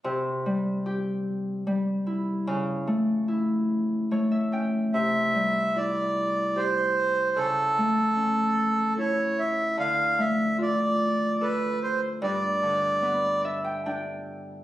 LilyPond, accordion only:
\new Staff \with { instrumentName = "Accordion" } { \time 3/4 \key c \major \tempo 4 = 74 r2. | r2. | e''4 d''4 c''4 | a'2 cis''8 e''8 |
f''8 e''8 d''4 b'8 c''8 | d''4. r4. | }